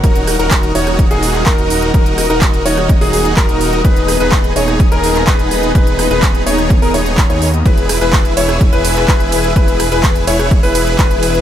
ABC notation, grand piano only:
X:1
M:4/4
L:1/16
Q:1/4=126
K:G#m
V:1 name="Grand piano"
A3 A3 c3 G3 A4 | A3 A3 c3 G3 A4 | B3 B3 c3 A3 B4 | B3 B3 c3 A c3 c2 z |
B3 B3 c3 B3 B4 | B3 B3 c3 B3 B4 |]